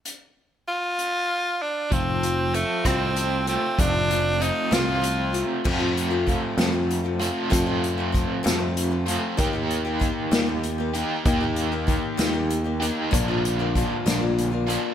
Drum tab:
CC |------|------|------|x-----|
HH |x--x--|xxxxxx|xxxxxx|-xxxxx|
SD |------|---r--|---o--|---o--|
BD |------|o--o--|o-----|o-o---|

CC |------|------|------|------|
HH |xxxxxx|xxxxxx|xxxxxx|xxxxxx|
SD |---o--|---o--|---o--|---o--|
BD |o-o---|o-o---|o-o---|o-o---|